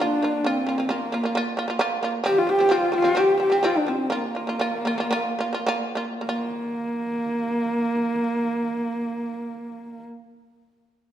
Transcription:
0.00 A#3 D4 F4
0.22 A#3 F4
0.44 A#3 C4 F4
0.67 A#3 F4
0.78 A#3 F4
0.89 A#3 F4
1.12 A#3 F4
1.24 A#3 F4
1.35 A#3 F4
1.57 A#3 F4
1.68 A#3 F4
1.79 A#3 F4
2.03 A#3 F4
2.24 F3 C4 G4
2.38 F4
2.47 F3 C4 G4
2.59 F3 C4
2.69 F3 C4 F4
2.92 F3 C4 F4
3.02 F3 C4
3.15 F3 C4
3.19 G4
3.38 F3 C4
3.42 G4
3.50 F3 C4
3.63 F3 C4 F4
3.77 D4
3.87 F3 C4
4.10 A#3 F4
4.35 A#3 F4
4.47 A#3 F4
4.59 A#3 F4
4.85 A#3 F4
4.98 A#3 F4
5.11 A#3 F4
5.39 A#3 F4
5.53 A#3 F4
5.66 A#3 F4
5.95 A#3 F4
6.21 A#3
6.27 A#3 F4

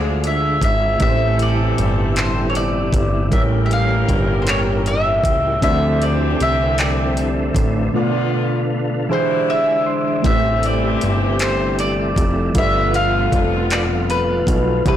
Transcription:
Already playing: D2 D3 E3 F3 G#3 D4 F4 G#4
0.24 E5, closed hi-hat
0.62 G#1 E5, kick, closed hi-hat
0.97 A1 A2 C3 E3 G3 A3 C4 E4 A4, kick, closed hi-hat
1.01 G4 B4 E5
1.10 C5
1.39 D5, closed hi-hat
1.78 G1, closed hi-hat
2.16 C5, clap, closed hi-hat
2.50 C#5
2.55 D5, closed hi-hat
2.93 G1, kick, closed hi-hat
3.29 A1 A2 C#3 E3 G3 A#3 G4 A#4 E5, kick, closed hi-hat
3.35 C#5
3.66 E5
3.71 F5, closed hi-hat
4.09 G1, kick, closed hi-hat
4.42 C5
4.47 C#5, clap, closed hi-hat
4.86 E5, closed hi-hat
5.24 C#2, kick, closed hi-hat
5.60 D2 D3 E3 A3 C4 E4 G4 E5, kick, closed hi-hat
5.65 E5
5.70 F3
6.02 D5, closed hi-hat
6.40 C2 E5, closed hi-hat
6.78 D5, clap, closed hi-hat
7.17 closed hi-hat
7.55 A1, kick, closed hi-hat
7.93 B2 D3 A3 B3 F4 D5
9.09 B2 C3 D3 E3 G#3 D4 E4 G#4 C5
9.48 E5
9.67 G#5
9.86 C6
10.22 A1 C3 E3 G3 A3 C4 E4 G4 E5, kick, closed hi-hat
10.28 B4
10.35 C5
10.63 D5, closed hi-hat
11.01 G1, closed hi-hat
11.39 C5, clap, closed hi-hat
11.79 D5, closed hi-hat
12.16 F1, kick, closed hi-hat
12.53 G1 B2 D3 F3 G3 B3 F4 A4, kick, closed hi-hat
12.58 B4 D5 E5
12.94 F5, closed hi-hat
13.32 F1, kick, closed hi-hat
13.70 D5, clap, closed hi-hat
14.10 B4, closed hi-hat
14.47 B1, kick, closed hi-hat
14.84 C2 B2 E3 G3 E4, kick, closed hi-hat
14.88 G4 B4

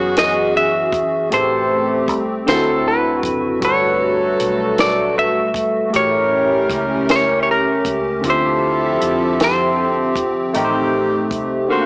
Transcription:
Already playing: F#2 C#3 E3 B3 C#4 F#4 G#4 C#5
0.17 D#5, snare, closed hi-hat
0.57 E5
0.92 kick, closed hi-hat
1.30 A1 E3 A3 C4 G4 A4 C5, closed hi-hat
1.34 C5
2.08 C2, kick, closed hi-hat
2.46 D2 D3 F#3 C4 E4 F#4 A4 C5, snare, closed hi-hat
2.50 A4
2.88 B4
3.23 F#1, kick, closed hi-hat
3.60 G1 F#3 G3 A3 D4 F#4 A4, kick, closed hi-hat
3.65 A4 B4 C#5
4.40 B1, closed hi-hat
4.78 D5, snare, closed hi-hat
5.19 E5
5.54 kick, closed hi-hat
5.90 G3 A3 C#4 E4 G4 A#4, closed hi-hat
5.94 A1 A#4 C#5
5.99 C#5
6.70 C#2, kick, closed hi-hat
7.09 C#5, snare, closed hi-hat
7.43 C#5
7.51 A#4
7.85 C#2, kick, closed hi-hat
8.21 D2 D3 F3 C4 E4 A4 E5, kick, closed hi-hat
8.25 F4 G4
8.29 C5 E5
9.01 F2, closed hi-hat
9.40 snare, closed hi-hat
9.44 C5
10.15 kick, closed hi-hat
10.54 A1 D#3 A3 C4 D#4 G4, closed hi-hat
10.58 A#4
10.65 C5
11.31 C2, kick, closed hi-hat
11.68 C3 D3 A#3 D4 F#4 C5 F5

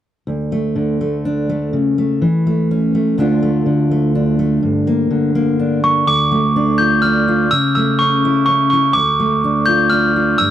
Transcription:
0.27 D2
0.52 A3
0.76 D3
1.01 A3
1.25 D4
1.49 A3
1.73 C#3
1.98 A3
2.22 E3
2.47 A3
2.71 C#4
2.95 A3
3.18 D2 D3 A3 D4 F4
3.43 A3
3.66 D3
3.91 A3
4.15 D4
4.39 A3
4.63 G2
4.87 A#3
5.11 D3
5.35 A#3
5.59 D4
5.84 A#3 C#6
6.07 D2 D6
6.32 A3
6.56 D4
6.78 F4 G6
7.02 D4 F6
7.28 F4
7.51 C#3 E6
7.75 A3 E6
7.99 C#4 C#6
8.25 E4
8.46 C#4 C#6
8.70 E4 C#6
8.93 D2 D6
9.20 A3
9.44 D4
9.66 F4 G6
9.90 D4 F6
10.16 F4
10.38 G2 E6

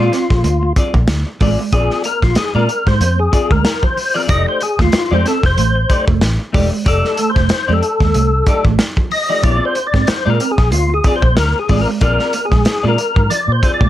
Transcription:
Already playing: F4
0.00 C4 F4 G#4 D5
0.12 C4, muted clean electric guitar stroke, snare, closed hi-hat
0.30 A#1, muted clean electric guitar stroke, kick, snare
0.43 D2 A#3, muted clean electric guitar stroke, closed hi-hat
0.63 muted clean electric guitar stroke
0.76 C4 F4 G#4 D5, kick, closed hi-hat
0.94 A#1 A#3, muted clean electric guitar stroke, kick
1.08 D2, muted clean electric guitar stroke, snare, closed hi-hat
1.27 muted clean electric guitar stroke
1.40 A1 G#3 C4 F4 G#4 D5, kick, open hi-hat
1.59 G#3, muted clean electric guitar stroke
1.72 A#1 C4 F4 G#4 D5, kick, closed hi-hat
1.90 muted clean electric guitar stroke, snare
2.04 A#3 A#4, closed hi-hat
2.22 A#1 A#3 F4, muted clean electric guitar stroke, kick, snare
2.35 G#4, muted clean electric guitar stroke, muted fingered electric bass stroke, snare, closed hi-hat
2.55 A#2 G#3 C4 F4 G#4 A#4 D5
2.69 muted clean electric guitar stroke, closed hi-hat
2.86 G#2 G#3 C5, muted clean electric guitar stroke, kick, snare
3.00 F2 A#3, muted clean electric guitar stroke, closed hi-hat
3.19 G#4
3.32 C4 F4 G#4 D5, muted clean electric guitar stroke, kick, closed hi-hat
3.51 D2 G#3 A#4, muted clean electric guitar stroke, kick
3.64 muted clean electric guitar stroke, snare, closed hi-hat
3.82 F3 C5, muted clean electric guitar stroke, kick
3.97 muted clean electric guitar stroke, open hi-hat
4.14 F3 C4 F4 G#4 A#4 D5
4.28 F1 F3 A3 D#4 G4 D5 D#5, kick, closed hi-hat
4.48 C5
4.60 G#4, muted clean electric guitar stroke, closed hi-hat
4.79 D#2 A3 F4, muted clean electric guitar stroke, kick, snare
4.92 muted clean electric guitar stroke, muted fingered electric bass stroke, snare, closed hi-hat
5.11 F2 G#3 A3 D#4 G4 C5 D5
5.25 C4 A4, muted clean electric guitar stroke, snare, closed hi-hat
5.43 F1 C5, muted clean electric guitar stroke, kick, snare
5.58 A1 A3, muted clean electric guitar stroke, closed hi-hat
5.75 muted clean electric guitar stroke
5.89 A3 D#4 G4 D5, kick, closed hi-hat
6.07 F1 A3, muted clean electric guitar stroke, kick
6.21 A1, muted clean electric guitar stroke, snare, closed hi-hat
6.39 muted clean electric guitar stroke
6.53 E1 G#3 A3 D#4 G4 D5, kick, open hi-hat
6.71 G#3, muted clean electric guitar stroke
6.85 F1 A3 D#4 G4 A4 D5, kick, closed hi-hat
7.04 muted clean electric guitar stroke, snare
7.17 A3, closed hi-hat
7.30 C5
7.35 F1 A3, muted clean electric guitar stroke, kick, snare
7.49 muted clean electric guitar stroke, muted fingered electric bass stroke, snare, closed hi-hat
7.68 F2 G#3 A3 D#4 G4 D5
7.72 A4
7.83 muted clean electric guitar stroke, closed hi-hat
8.00 D#2 G#3, muted clean electric guitar stroke, kick, snare
8.14 C2 A3, muted clean electric guitar stroke, closed hi-hat
8.46 A3 D#4 G4 D5, muted clean electric guitar stroke, kick, closed hi-hat
8.65 A1 A3, muted clean electric guitar stroke, kick
8.79 muted clean electric guitar stroke, snare, closed hi-hat
8.96 F3, muted clean electric guitar stroke, kick
9.11 D#5, muted clean electric guitar stroke, open hi-hat
9.29 F3 A3 D#4 G4 D5
9.43 A#1 A#3 B3 E4 G4 C#5 D5, kick, closed hi-hat
9.56 C4 F4 G#4 D5
9.65 C5
9.75 muted clean electric guitar stroke, closed hi-hat
9.87 D5
9.94 G#2 C4, muted clean electric guitar stroke, kick, snare
10.07 C5, muted clean electric guitar stroke, muted fingered electric bass stroke, snare, closed hi-hat
10.25 A#2 G#3 C4 F4 G#4 D5
10.30 A#4
10.40 C4, muted clean electric guitar stroke, closed hi-hat
10.51 G#4
10.58 A#1, muted clean electric guitar stroke, kick, snare
10.72 D2 A#3 F4, muted clean electric guitar stroke, closed hi-hat
10.90 G#4, muted clean electric guitar stroke
11.04 C4 F4 G#4 D5, kick, closed hi-hat
11.16 C5
11.22 A#1 A#3, muted clean electric guitar stroke, kick
11.37 D2 A#4, snare, closed hi-hat
11.56 G#4, muted clean electric guitar stroke
11.69 A1 G#3 C4 F4 G#4 D5, kick, open hi-hat
11.82 A#4
11.87 G#3, muted clean electric guitar stroke
12.01 A#1 C4 F4 G#4 A#4 D5, kick, closed hi-hat
12.19 muted clean electric guitar stroke, snare
12.33 A#3, closed hi-hat
12.45 G#4
12.51 A#1 G#3, muted clean electric guitar stroke, kick, snare
12.65 muted fingered electric bass stroke, muted clean electric guitar stroke, snare, closed hi-hat
12.83 A#2 G#3 C4 F4 G#4 D5
12.88 A#4
12.98 muted clean electric guitar stroke, closed hi-hat
13.16 G#2 F3, muted clean electric guitar stroke, kick
13.30 F3 D5, muted clean electric guitar stroke, closed hi-hat
13.48 A#2
13.52 C5
13.63 C4 F4 G#4 D5, muted clean electric guitar stroke, kick, closed hi-hat
13.74 D5
13.81 A#2 G#3, muted clean electric guitar stroke, kick

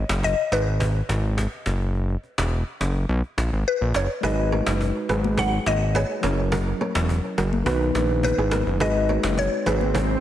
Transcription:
Already playing: D#5
0.09 F#1, cajon slap
0.23 D#5, cajon bass, cajon slap
0.38 cajon slap
0.52 G#1 B4, cajon slap
0.67 cajon slap
0.80 cajon bass
0.95 cajon slap
1.09 G#1, cajon slap
1.24 cajon slap
1.38 cajon bass, cajon slap
1.52 cajon slap
1.66 F#1, cajon slap
1.81 cajon slap
1.95 cajon slap
2.10 cajon slap
2.24 cajon slap
2.38 E1, cajon slap
2.52 cajon slap
2.67 cajon slap
2.80 F#1, cajon slap
2.95 cajon slap
3.09 B1, cajon slap
3.24 cajon slap
3.38 A#1, cajon slap
3.53 G#1, cajon slap
3.66 B4, cajon slap
3.81 A#1, cajon slap
3.94 F#1 C#5, cajon slap
4.10 cajon slap
4.21 G#1 G#3 D#4 F#4 G#4 B4 D#5, cajon bass, low conga
4.26 A#4
4.32 B4
4.38 cajon slap
4.52 A#4 C#5, cajon slap, high conga
4.66 F#1, cajon slap
4.80 cajon bass, cajon slap
4.95 cajon slap
5.09 G#1 G#4 B4, cajon slap, low conga
5.24 cajon slap, high conga
5.38 G#4 C#5 F#5, cajon bass, low conga
5.53 cajon slap
5.66 G#1 D#5, cajon slap, high conga
5.81 cajon slap
5.95 G#4 B4 C#5, cajon bass, cajon slap, high conga
6.09 cajon slap
6.21 F#1 F#3 C#4 E4 A#4 C#5, cajon slap, high conga, low conga
6.26 A#4
6.38 cajon slap
6.52 F#4 A#4, cajon bass, low conga
6.67 cajon slap
6.81 A#4 C#5, cajon slap, high conga
6.95 E1, cajon slap
7.09 cajon bass, cajon slap
7.24 cajon slap
7.38 F#1 F#4 A#4, cajon slap, low conga
7.52 cajon slap, high conga
7.64 B1 D#3 B3 D#4 F#4 B4, cajon bass, low conga
7.69 B4
7.81 cajon slap
7.95 A#1, cajon slap, high conga
8.10 cajon slap
8.23 B4, cajon bass, high conga
8.38 G#1 E4 G#4, cajon slap
8.51 F#4 A#4, cajon slap, high conga, low conga
8.67 F#1, cajon slap
8.78 G#1 G#3 D#4 F#4 G#4 B4 D#5, cajon bass, swell, low conga
8.83 B4
8.95 cajon slap
9.09 A#4 C#5, cajon slap, high conga
9.23 F#1, cajon slap
9.37 C#5, cajon bass, cajon slap
9.52 cajon slap
9.66 G#1 G#4 B4, cajon slap, low conga
9.81 cajon slap, high conga
9.95 G#4 C#5, cajon bass, low conga
10.10 cajon slap

